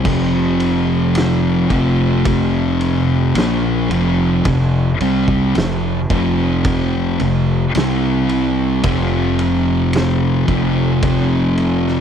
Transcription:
0.05 F1 F2 C3 F3, kick, crash
0.60 ride
1.15 snare, ride
1.70 F1 F2 C3 F3, kick, ride
2.25 kick, ride
2.81 ride
3.35 A#1 A#2 F3 A#3, snare, ride
3.90 F1 F2 C3 F3, ride
4.45 F1 F2 C3, kick, ride
5.00 C2 C3 G3 C4, ride
5.28 kick
5.55 F1 F2 C3, snare, ride
6.10 F1 F2 C3 F3, kick, ride
6.64 kick, ride
7.20 F1 F2 C3, ride
7.75 C2 C3 G3 C4, snare, ride
8.29 ride
8.83 F1 F2 C3 F3, kick, ride
9.39 ride
9.93 snare, ride
10.48 F1 F2 C3 F3, kick, ride
11.03 kick, ride
11.57 ride
11.87 snare

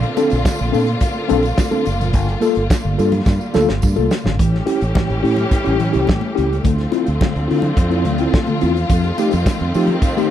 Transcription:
Already playing: D3 A3 A#3 C4 F4
0.03 closed hi-hat
0.17 C4 D4 A4, closed hi-hat, tambourine, muted conga
0.30 A#1 D4 A4, closed hi-hat, tambourine
0.45 A4, kick, snare, tambourine, high conga
0.59 A#1 A#2 F3, closed hi-hat
0.72 A#2 C4 D4 A4, open hi-hat, tambourine
0.87 closed hi-hat
1.01 kick, closed hi-hat, tambourine, muted conga
1.29 A#1 C4 D4 A4, closed hi-hat, tambourine, low conga
1.42 closed hi-hat, tambourine
1.58 kick, snare, tambourine, high conga
1.71 C4 D4 A4, closed hi-hat, high conga
1.85 F#1, closed hi-hat, tambourine
2.00 A#2 F3, closed hi-hat, tambourine
2.13 G1 G2 D3 G3, kick, closed hi-hat, tambourine
2.27 snare
2.41 A#3 F4 A4, closed hi-hat, tambourine, muted conga
2.55 G1 F4, closed hi-hat
2.70 F4 A4, kick, snare, tambourine, high conga
2.85 G1 G2 D3
2.98 G2 A#3 F4 A4, closed hi-hat, tambourine
3.12 closed hi-hat, low conga
3.26 G2, kick, snare, tambourine, muted conga
3.41 tambourine
3.54 D2 A#3 F4 A4, snare, tambourine, low conga
3.69 G1, snare
3.82 G2, kick, tambourine, high conga
3.96 C2 A#3 F4 A4, high conga
4.11 snare, tambourine
4.23 G#1 G2 D3, snare
4.39 A1 A2 E3 G3 A3 C#4 G4, kick, closed hi-hat
4.52 E4 G4, snare
4.66 C#4 E4 G4, closed hi-hat, muted conga
4.81 A1, closed hi-hat
4.95 A2 E3, kick, snare, high conga
5.10 A1, closed hi-hat
5.23 A2 C#4 E4 G4, open hi-hat
5.36 E4 G4, closed hi-hat, low conga
5.51 kick, closed hi-hat, muted conga
5.64 A1 C#4 E4 G4, closed hi-hat
5.79 A2 E3, closed hi-hat, low conga
5.93 C2 C#4 E4 G4, closed hi-hat
6.07 A2 E3, kick, snare, high conga
6.21 high conga
6.35 C#2 C#4 E4 G4, closed hi-hat
6.50 E4 G4, closed hi-hat
6.63 D2 D3 F3 A3 C4 F4, kick, closed hi-hat, muted conga
6.78 E4 F4, snare, closed hi-hat
6.92 C4 E4 F4, closed hi-hat, muted conga
7.06 D2, closed hi-hat
7.21 D3 A3, kick, snare, high conga
7.36 D2, closed hi-hat
7.48 D3 C4 E4 F4, open hi-hat
7.62 E4 F4, closed hi-hat, low conga
7.77 F2, kick, closed hi-hat, muted conga
7.90 C4 E4 F4, closed hi-hat
8.05 D2 D3 A3, closed hi-hat, low conga
8.18 C4 E4 F4, closed hi-hat
8.34 E4 F4, kick, snare, high conga
8.47 D3 A3, closed hi-hat, high conga
8.61 E2 C4 E4 F4, closed hi-hat
8.77 closed hi-hat
8.89 F2 D#3 F3 C4, kick, closed hi-hat, tambourine, muted conga
9.04 D#4 G4, closed hi-hat
9.18 A3 D#4 G4, closed hi-hat, tambourine, muted conga
9.31 F2, closed hi-hat, tambourine
9.46 F3, kick, snare, tambourine, high conga
9.60 F2, closed hi-hat
9.74 F3 A3 D#4 G4, open hi-hat, tambourine
9.88 D#4 G4, closed hi-hat, low conga
10.02 kick, closed hi-hat, tambourine, muted conga
10.17 A3 D#4 G4, closed hi-hat, tambourine

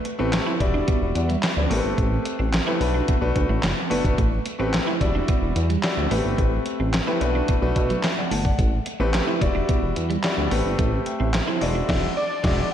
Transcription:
0.05 muted clean electric guitar stroke, closed hi-hat
0.19 A1 A3 C4 G4 B4
0.33 snare, clap, closed hi-hat
0.46 E4
0.60 E1 G3 E4 F#4 D5, muted clean electric guitar stroke, kick, closed hi-hat
0.74 D4
0.88 B3, kick, closed hi-hat
1.02 E1
1.15 E2 D5 F#5, muted clean electric guitar stroke, closed hi-hat
1.29 G3 E5, closed hi-hat
1.43 snare, clap, closed hi-hat
1.57 D2 B4 D5
1.70 A1 A3 C4 G4 A#4, open hi-hat
1.77 B4
1.84 G1
1.98 A1 A3, kick, closed hi-hat
2.25 muted clean electric guitar stroke, closed hi-hat
2.39 A1 C4
2.53 snare, clap, closed hi-hat
2.66 A3 C4 E4 G4 B4
2.80 B1 A3 D4 F#4 B4, muted clean electric guitar stroke, open hi-hat
2.94 D4
3.08 B3, kick, closed hi-hat
3.21 B1 A3 D4 F#4 B4
3.36 D2, muted clean electric guitar stroke, kick, closed hi-hat
3.49 A1 A3
3.63 F#1, snare, clap, closed hi-hat
3.90 F#1 A3 B3 D4 F#4 B4, open hi-hat
4.05 G1, kick, closed hi-hat
4.18 A1 A3, kick, closed hi-hat
4.46 muted clean electric guitar stroke, closed hi-hat
4.59 A1 A3 C4 G4 B4
4.74 snare, clap, closed hi-hat
4.87 E4
5.00 E1 G3 E4 F#4 D5, muted clean electric guitar stroke, kick, closed hi-hat
5.15 D4
5.28 B3, kick, closed hi-hat
5.42 E1
5.56 E2, muted clean electric guitar stroke, closed hi-hat
5.70 G3, closed hi-hat
5.83 G3 E4 F#4 D5, snare, clap, closed hi-hat
5.97 D2
6.10 A1 A3 B3 G4 B4, open hi-hat
6.17 C4
6.25 G1
6.38 A1 A3, kick, closed hi-hat
6.66 muted clean electric guitar stroke, closed hi-hat
6.80 A1 C4
6.94 snare, clap, closed hi-hat
7.07 A3 C4 E4 G4 B4
7.20 B1 A3 D4 F#4 B4, muted clean electric guitar stroke, closed hi-hat
7.35 D4
7.48 B3, kick, closed hi-hat
7.62 B1 A3 D4 F#4 B4
7.76 B2, muted clean electric guitar stroke, kick, closed hi-hat
7.90 F#3, closed hi-hat
8.03 E5, snare, clap, closed hi-hat
8.17 D5 F#5
8.31 G1 A3 F#5 A5, open hi-hat
8.45 D5 F#5, kick
8.59 A1 A3, kick, closed hi-hat
8.86 muted clean electric guitar stroke, closed hi-hat
9.00 A1 A3 C4 G4 B4
9.14 snare, clap, closed hi-hat
9.27 E4
9.41 E1 G3 E4 F#4 D5, muted clean electric guitar stroke, kick, closed hi-hat
9.55 D4
9.69 B3, kick, closed hi-hat
9.83 E1
9.96 E2, muted clean electric guitar stroke, closed hi-hat
10.10 G3, closed hi-hat
10.23 G3 E4 F#4 D5, snare, clap, closed hi-hat
10.38 D2
10.51 A1 A3 C4 G4 B4, open hi-hat
10.66 G1
10.78 A1 A3, kick, closed hi-hat
11.06 E5 G5, muted clean electric guitar stroke, closed hi-hat
11.20 A1 C4 C5 E5
11.34 snare, clap, closed hi-hat
11.47 E4 A4 C5
11.61 E1 G#3 E4 F#4 D5, muted clean electric guitar stroke, open hi-hat
11.75 D4
11.88 E1 G#3 E4 F#4 D5, kick, snare, crash
12.17 D5
12.43 E1 G#3 E4 F#4 D5, kick, snare, crash

